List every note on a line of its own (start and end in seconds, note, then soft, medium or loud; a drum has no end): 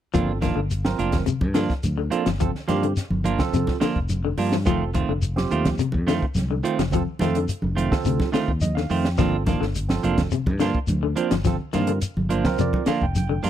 0.14 0.51 G1 medium
0.14 0.31 F3 medium
0.14 0.28 F3 medium
0.14 0.31 A#3 medium
0.14 0.37 C4 medium
0.14 0.32 D4 medium
0.14 0.38 F4 medium
0.14 0.32 F4 medium
0.14 0.38 A4 medium
0.14 kick medium
0.14 closed hi-hat medium
0.14 high conga soft
0.14 low conga medium
0.14 shekere medium
0.41 0.50 D#3 medium
0.41 0.59 F3 soft
0.41 0.59 A#3 medium
0.41 0.59 D4 medium
0.41 0.60 F4 medium
0.41 kick medium
0.41 snare soft
0.41 closed hi-hat soft
0.41 high conga medium
0.41 shekere soft
0.56 0.93 G1 medium
0.56 0.70 D3 medium
0.71 closed hi-hat medium
0.71 high conga soft
0.71 shekere medium
0.84 1.22 C4 medium
0.84 1.22 F4 medium
0.84 1.22 A#4 medium
0.84 snare medium
0.84 high conga medium
0.98 1.24 F1 medium
0.98 1.16 F3 medium
0.98 1.16 A#3 soft
0.98 1.16 D4 medium
0.98 1.16 F4 medium
0.98 closed hi-hat soft
0.98 shekere soft
1.12 kick medium
1.12 snare medium
1.12 closed hi-hat soft
1.12 high conga medium
1.12 low conga medium
1.26 1.41 C3 medium
1.26 closed hi-hat medium
1.26 high conga soft
1.26 shekere medium
1.41 1.65 G2 medium
1.41 kick medium
1.41 high conga medium
1.54 1.69 D3 medium
1.54 1.72 F3 medium
1.54 1.72 A#3 medium
1.54 1.72 D4 medium
1.54 1.73 F4 medium
1.54 snare medium
1.54 closed hi-hat soft
1.54 shekere soft
1.69 kick medium
1.69 snare soft
1.83 2.08 D2 medium
1.83 closed hi-hat medium
1.83 high conga medium
1.83 shekere medium
1.98 2.12 D3 medium
2.10 2.28 F3 medium
2.10 2.28 A#3 medium
2.10 2.21 C4 medium
2.10 2.29 D4 medium
2.10 2.29 F4 medium
2.10 2.21 F4 medium
2.10 2.22 A4 medium
2.10 closed hi-hat medium
2.10 shekere soft
2.26 2.51 G1 medium
2.26 2.33 F3 medium
2.26 snare medium
2.26 closed hi-hat soft
2.40 2.54 F3 medium
2.40 2.50 C4 medium
2.40 2.50 F4 medium
2.40 2.50 A4 medium
2.40 kick medium
2.40 closed hi-hat medium
2.40 high conga soft
2.40 low conga medium
2.40 shekere medium
2.55 snare soft
2.68 2.93 G2 medium
2.68 2.76 D#3 medium
2.68 2.85 F3 medium
2.68 2.85 A#3 medium
2.68 2.92 C4 medium
2.68 2.85 D4 medium
2.68 2.92 F4 medium
2.68 2.86 F4 medium
2.68 2.92 G4 medium
2.68 snare soft
2.68 closed hi-hat soft
2.68 high conga medium
2.68 shekere soft
2.83 2.97 D3 medium
2.83 closed hi-hat soft
2.97 muted fingered electric bass stroke soft
2.97 snare soft
2.97 closed hi-hat medium
2.97 high conga soft
2.97 shekere medium
3.10 3.35 G1 medium
3.10 high conga medium
3.24 3.42 F3 medium
3.24 3.42 A#3 medium
3.24 3.42 D4 medium
3.24 3.42 F4 medium
3.24 closed hi-hat soft
3.24 high conga medium
3.24 shekere soft
3.39 3.76 C4 medium
3.39 3.76 F4 medium
3.39 3.77 A4 medium
3.39 kick medium
3.39 snare medium
3.39 high conga medium
3.39 low conga medium
3.53 3.65 F2 medium
3.53 3.68 C3 medium
3.53 closed hi-hat medium
3.53 high conga soft
3.53 shekere medium
3.67 kick medium
3.67 snare soft
3.67 high conga medium
3.80 3.96 D3 medium
3.80 3.98 F3 medium
3.80 3.98 A#3 medium
3.80 3.98 D4 medium
3.80 3.98 F4 medium
3.80 muted fingered electric bass stroke soft
3.80 snare medium
3.80 closed hi-hat soft
3.80 shekere soft
3.96 4.32 F1 medium
3.96 kick medium
4.09 closed hi-hat medium
4.09 high conga medium
4.09 shekere medium
4.25 4.39 D3 medium
4.38 4.68 G2 medium
4.38 4.55 F3 medium
4.38 4.55 A#3 medium
4.38 4.55 D4 medium
4.38 4.55 F4 medium
4.38 open hi-hat medium
4.38 shekere soft
4.52 4.61 F3 medium
4.52 snare medium
4.66 5.03 F1 medium
4.66 4.83 D#3 medium
4.66 4.81 F3 medium
4.66 4.83 A3 medium
4.66 4.89 C4 medium
4.66 4.83 C4 medium
4.66 4.89 F4 medium
4.66 4.83 F4 medium
4.66 4.90 A4 medium
4.66 kick medium
4.66 closed hi-hat medium
4.66 high conga soft
4.66 low conga medium
4.66 shekere medium
4.94 5.11 D#3 medium
4.94 5.12 A3 soft
4.94 5.12 C4 medium
4.94 5.12 F4 medium
4.94 muted clean electric guitar stroke medium
4.94 kick medium
4.94 closed hi-hat medium
4.94 high conga medium
4.94 shekere soft
5.09 5.45 F1 medium
5.09 5.23 D3 medium
5.22 closed hi-hat medium
5.22 high conga soft
5.22 shekere medium
5.36 5.74 C4 medium
5.36 5.74 F4 medium
5.36 5.74 G4 medium
5.36 snare medium
5.36 high conga medium
5.51 5.76 D#2 medium
5.51 5.68 D#3 medium
5.51 5.68 A3 medium
5.51 5.68 C4 medium
5.51 5.69 F4 medium
5.51 closed hi-hat soft
5.51 shekere soft
5.65 kick medium
5.65 snare medium
5.65 closed hi-hat medium
5.65 high conga medium
5.65 low conga medium
5.78 5.93 C3 medium
5.78 muted fingered electric bass stroke soft
5.78 closed hi-hat medium
5.78 high conga soft
5.78 shekere medium
5.92 6.18 F2 medium
5.92 kick medium
5.92 high conga medium
6.07 6.23 D3 medium
6.07 6.24 D#3 medium
6.07 6.24 A3 medium
6.07 6.25 C4 medium
6.07 6.25 F4 medium
6.07 snare medium
6.07 closed hi-hat medium
6.07 shekere soft
6.22 kick medium
6.35 6.60 C2 medium
6.35 snare soft
6.35 closed hi-hat medium
6.35 high conga medium
6.35 shekere medium
6.51 6.65 D3 medium
6.63 6.81 D#3 medium
6.63 6.81 A3 medium
6.63 6.73 C4 medium
6.63 6.81 C4 medium
6.63 6.73 F4 medium
6.63 6.81 F4 medium
6.63 6.74 C5 medium
6.63 closed hi-hat medium
6.63 shekere soft
6.79 7.03 F1 medium
6.79 6.86 F3 medium
6.79 snare medium
6.79 closed hi-hat medium
6.91 7.08 F3 medium
6.91 7.02 C4 medium
6.91 7.02 F4 medium
6.91 7.02 A4 medium
6.91 kick medium
6.91 closed hi-hat medium
6.91 high conga soft
6.91 low conga medium
6.91 shekere medium
7.19 7.45 F2 medium
7.19 7.37 D#3 medium
7.19 7.29 D#3 medium
7.19 7.37 A3 medium
7.19 7.44 C4 medium
7.19 7.38 C4 medium
7.19 7.44 F4 medium
7.19 7.38 F4 medium
7.19 7.44 A4 medium
7.19 snare soft
7.19 closed hi-hat medium
7.19 high conga medium
7.19 shekere soft
7.35 7.50 D3 medium
7.35 closed hi-hat medium
7.49 muted fingered electric bass stroke soft
7.49 closed hi-hat medium
7.49 high conga soft
7.49 shekere medium
7.62 7.88 F1 medium
7.62 high conga medium
7.75 7.94 D#3 medium
7.75 7.94 A3 medium
7.75 7.94 C4 medium
7.75 7.94 F4 medium
7.75 closed hi-hat soft
7.75 high conga medium
7.75 shekere soft
7.91 8.28 C4 medium
7.91 8.29 F4 medium
7.91 8.29 A4 medium
7.91 kick medium
7.91 snare medium
7.91 low conga medium
8.05 8.18 D2 medium
8.05 8.20 C3 medium
8.05 closed hi-hat medium
8.05 high conga soft
8.05 shekere medium
8.20 kick medium
8.20 snare soft
8.20 high conga medium
8.32 8.48 D3 medium
8.32 8.50 D#3 medium
8.32 8.50 A3 medium
8.32 8.51 C4 medium
8.32 8.51 F4 medium
8.32 muted fingered electric bass stroke soft
8.32 snare medium
8.32 closed hi-hat soft
8.32 shekere soft
8.48 8.85 D#2 medium
8.48 kick medium
8.61 8.75 D#5 medium
8.61 closed hi-hat medium
8.61 high conga medium
8.61 shekere medium
8.75 8.91 D3 medium
8.75 8.89 F5 medium
8.75 snare soft
8.90 9.20 F2 medium
8.90 9.07 D#3 medium
8.90 9.07 A3 medium
8.90 9.08 C4 medium
8.90 9.08 F4 medium
8.90 9.17 G5 medium
8.90 open hi-hat medium
8.90 shekere soft
9.05 snare medium
9.18 9.55 G1 medium
9.18 9.33 F3 medium
9.18 9.36 F3 medium
9.18 9.36 A#3 medium
9.18 9.42 C4 medium
9.18 9.36 D4 medium
9.18 9.36 F4 medium
9.18 9.42 F4 medium
9.18 9.42 A4 medium
9.18 kick medium
9.18 snare soft
9.18 closed hi-hat medium
9.18 high conga soft
9.18 low conga medium
9.18 shekere medium
9.46 9.54 D#3 medium
9.46 9.64 F3 soft
9.46 9.64 A#3 medium
9.46 9.64 D4 medium
9.46 9.65 F4 medium
9.46 kick medium
9.46 snare soft
9.46 closed hi-hat soft
9.46 high conga medium
9.46 shekere soft
9.61 9.98 G1 medium
9.61 9.75 D3 medium
9.61 snare soft
9.75 closed hi-hat medium
9.75 high conga soft
9.75 shekere medium
9.89 10.26 C4 medium
9.89 10.27 F4 medium
9.89 10.27 A4 medium
9.89 snare medium
9.89 high conga medium
10.03 10.28 F1 medium
10.03 10.21 F3 medium
10.03 10.21 A#3 medium
10.03 10.21 D4 medium
10.03 10.21 F4 medium
10.03 closed hi-hat soft
10.03 high conga medium
10.03 shekere soft
10.18 kick medium
10.18 snare medium
10.18 closed hi-hat soft
10.18 high conga medium
10.18 low conga medium
10.31 10.46 C3 medium
10.31 closed hi-hat medium
10.31 shekere medium
10.46 10.71 G2 medium
10.46 kick medium
10.46 high conga medium
10.59 10.74 D3 medium
10.59 10.77 F3 medium
10.59 10.78 A#3 medium
10.59 10.78 D4 medium
10.59 10.78 F4 medium
10.59 snare medium
10.59 closed hi-hat medium
10.59 shekere soft
10.75 kick medium
10.87 11.13 D2 medium
10.87 closed hi-hat medium
10.87 high conga medium
10.87 shekere medium
11.03 11.17 D3 medium
11.16 11.34 F3 medium
11.16 11.34 A#3 medium
11.16 11.27 C4 medium
11.16 11.34 D4 medium
11.16 11.34 F4 medium
11.16 11.27 F4 medium
11.16 11.27 C5 medium
11.16 closed hi-hat medium
11.16 shekere soft
11.31 11.56 G1 medium
11.31 11.38 F3 medium
11.31 snare medium
11.31 closed hi-hat soft
11.44 11.59 F3 medium
11.44 11.55 C4 medium
11.44 11.56 F4 medium
11.44 11.56 A4 loud
11.44 kick medium
11.44 snare soft
11.44 closed hi-hat medium
11.44 high conga soft
11.44 low conga medium
11.44 shekere medium
11.73 11.99 G2 medium
11.73 11.80 D#3 medium
11.73 11.91 F3 medium
11.73 11.91 A#3 medium
11.73 11.98 C4 medium
11.73 11.91 D4 medium
11.73 11.91 F4 medium
11.73 11.98 F4 medium
11.73 11.98 A#4 medium
11.73 snare soft
11.73 closed hi-hat medium
11.73 high conga medium
11.73 shekere soft
11.87 12.02 D3 medium
11.87 closed hi-hat medium
12.01 muted fingered electric bass stroke soft
12.01 closed hi-hat medium
12.01 high conga soft
12.01 shekere medium
12.17 12.41 G1 medium
12.17 high conga medium
12.29 12.47 F3 medium
12.29 12.47 A#3 medium
12.29 12.48 D4 medium
12.29 12.48 F4 medium
12.29 12.58 C5 medium
12.29 closed hi-hat soft
12.29 high conga medium
12.29 shekere soft
12.45 12.83 C4 medium
12.45 12.83 F4 medium
12.45 12.83 A#4 medium
12.45 kick medium
12.45 snare medium
12.45 high conga medium
12.45 low conga medium
12.58 12.71 F2 medium
12.58 12.73 C3 medium
12.58 12.86 D5 medium
12.58 closed hi-hat medium
12.58 high conga soft
12.58 shekere medium
12.73 kick medium
12.73 high conga medium
12.86 13.01 D3 medium
12.86 13.04 F3 medium
12.86 13.04 A#3 medium
12.86 13.05 D4 medium
12.86 13.05 F4 medium
12.86 13.01 F5 medium
12.86 muted fingered electric bass stroke soft
12.86 snare medium
12.86 closed hi-hat soft
12.86 shekere soft
13.02 13.38 F1 medium
13.02 13.16 G5 medium
13.02 kick medium
13.15 13.43 G5 medium
13.15 closed hi-hat medium
13.15 high conga medium
13.15 shekere medium
13.29 13.44 D3 medium
13.43 13.50 G2 medium
13.43 13.50 F3 medium
13.43 13.50 A#3 medium
13.43 13.50 D4 medium
13.43 13.50 F4 medium
13.43 13.50 A#5 medium
13.43 open hi-hat medium
13.43 shekere soft